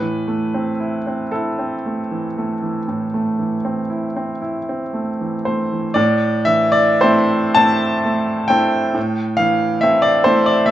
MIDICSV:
0, 0, Header, 1, 2, 480
1, 0, Start_track
1, 0, Key_signature, 0, "minor"
1, 0, Tempo, 1038062
1, 2753, Time_signature, 12, 3, 24, 8
1, 3725, Tempo, 881057
1, 5171, End_track
2, 0, Start_track
2, 0, Title_t, "Grand piano"
2, 0, Program_c, 0, 0
2, 0, Control_c, 0, 64, 127
2, 0, Note_on_c, 0, 45, 48
2, 0, Note_on_c, 0, 71, 73
2, 8, Note_on_c, 0, 52, 38
2, 127, Note_on_c, 0, 57, 39
2, 199, Note_off_c, 0, 52, 0
2, 252, Note_on_c, 0, 60, 41
2, 320, Note_off_c, 0, 57, 0
2, 371, Note_on_c, 0, 64, 41
2, 445, Note_off_c, 0, 60, 0
2, 495, Note_on_c, 0, 60, 36
2, 566, Note_off_c, 0, 64, 0
2, 608, Note_on_c, 0, 69, 53
2, 610, Note_off_c, 0, 71, 0
2, 619, Note_on_c, 0, 64, 41
2, 689, Note_off_c, 0, 60, 0
2, 735, Note_on_c, 0, 60, 37
2, 810, Note_off_c, 0, 64, 0
2, 860, Note_on_c, 0, 57, 34
2, 926, Note_off_c, 0, 60, 0
2, 977, Note_on_c, 0, 52, 38
2, 1048, Note_off_c, 0, 57, 0
2, 1101, Note_on_c, 0, 57, 38
2, 1165, Note_off_c, 0, 52, 0
2, 1215, Note_on_c, 0, 52, 35
2, 1287, Note_off_c, 0, 57, 0
2, 1312, Note_off_c, 0, 45, 0
2, 1332, Note_on_c, 0, 45, 38
2, 1404, Note_off_c, 0, 52, 0
2, 1452, Note_on_c, 0, 57, 35
2, 1568, Note_on_c, 0, 52, 34
2, 1639, Note_off_c, 0, 57, 0
2, 1687, Note_on_c, 0, 60, 37
2, 1755, Note_off_c, 0, 52, 0
2, 1803, Note_on_c, 0, 64, 37
2, 1872, Note_off_c, 0, 60, 0
2, 1926, Note_on_c, 0, 60, 35
2, 1990, Note_off_c, 0, 64, 0
2, 2033, Note_off_c, 0, 69, 0
2, 2042, Note_on_c, 0, 64, 39
2, 2111, Note_off_c, 0, 60, 0
2, 2169, Note_on_c, 0, 60, 36
2, 2231, Note_off_c, 0, 64, 0
2, 2282, Note_on_c, 0, 57, 35
2, 2357, Note_off_c, 0, 60, 0
2, 2407, Note_on_c, 0, 52, 31
2, 2476, Note_off_c, 0, 57, 0
2, 2521, Note_on_c, 0, 72, 59
2, 2532, Note_on_c, 0, 57, 35
2, 2598, Note_off_c, 0, 52, 0
2, 2646, Note_on_c, 0, 52, 36
2, 2714, Note_off_c, 0, 57, 0
2, 2736, Note_off_c, 0, 45, 0
2, 2747, Note_on_c, 0, 74, 81
2, 2753, Note_off_c, 0, 72, 0
2, 2753, Note_on_c, 0, 45, 76
2, 2756, Note_off_c, 0, 52, 0
2, 2761, Control_c, 0, 64, 0
2, 2847, Control_c, 0, 64, 127
2, 2983, Note_on_c, 0, 76, 98
2, 2984, Note_off_c, 0, 74, 0
2, 2988, Note_on_c, 0, 52, 50
2, 3106, Note_on_c, 0, 74, 89
2, 3112, Note_off_c, 0, 76, 0
2, 3241, Note_on_c, 0, 72, 94
2, 3242, Note_off_c, 0, 74, 0
2, 3251, Note_on_c, 0, 57, 57
2, 3252, Note_on_c, 0, 60, 57
2, 3255, Note_on_c, 0, 64, 58
2, 3402, Note_off_c, 0, 52, 0
2, 3483, Note_off_c, 0, 57, 0
2, 3483, Note_off_c, 0, 60, 0
2, 3485, Note_off_c, 0, 64, 0
2, 3489, Note_on_c, 0, 81, 105
2, 3496, Note_off_c, 0, 72, 0
2, 3500, Note_on_c, 0, 60, 53
2, 3501, Note_on_c, 0, 57, 50
2, 3501, Note_on_c, 0, 64, 61
2, 3705, Note_off_c, 0, 57, 0
2, 3705, Note_off_c, 0, 60, 0
2, 3705, Note_off_c, 0, 64, 0
2, 3722, Note_on_c, 0, 57, 50
2, 3955, Note_on_c, 0, 79, 96
2, 3958, Note_off_c, 0, 57, 0
2, 3963, Note_off_c, 0, 81, 0
2, 3966, Note_on_c, 0, 57, 51
2, 3967, Note_on_c, 0, 60, 50
2, 3967, Note_on_c, 0, 64, 56
2, 4191, Note_off_c, 0, 57, 0
2, 4191, Note_off_c, 0, 60, 0
2, 4192, Note_off_c, 0, 64, 0
2, 4193, Note_off_c, 0, 45, 0
2, 4208, Note_on_c, 0, 45, 56
2, 4225, Control_c, 0, 64, 0
2, 4314, Control_c, 0, 64, 127
2, 4440, Note_on_c, 0, 77, 91
2, 4449, Note_off_c, 0, 79, 0
2, 4453, Note_on_c, 0, 52, 52
2, 4680, Note_on_c, 0, 76, 91
2, 4684, Note_off_c, 0, 77, 0
2, 4691, Note_on_c, 0, 57, 48
2, 4692, Note_on_c, 0, 60, 49
2, 4693, Note_on_c, 0, 64, 54
2, 4795, Note_on_c, 0, 74, 89
2, 4804, Note_off_c, 0, 76, 0
2, 4831, Note_off_c, 0, 52, 0
2, 4905, Note_off_c, 0, 57, 0
2, 4905, Note_off_c, 0, 60, 0
2, 4906, Note_off_c, 0, 64, 0
2, 4916, Note_on_c, 0, 72, 88
2, 4920, Note_off_c, 0, 74, 0
2, 4923, Note_on_c, 0, 57, 51
2, 4924, Note_on_c, 0, 60, 46
2, 4931, Note_on_c, 0, 64, 56
2, 5035, Note_on_c, 0, 74, 84
2, 5039, Note_off_c, 0, 72, 0
2, 5138, Note_off_c, 0, 57, 0
2, 5139, Note_off_c, 0, 60, 0
2, 5143, Note_off_c, 0, 64, 0
2, 5143, Note_on_c, 0, 76, 89
2, 5150, Note_on_c, 0, 57, 53
2, 5158, Note_off_c, 0, 74, 0
2, 5171, Note_off_c, 0, 45, 0
2, 5171, Note_off_c, 0, 57, 0
2, 5171, Note_off_c, 0, 76, 0
2, 5171, End_track
0, 0, End_of_file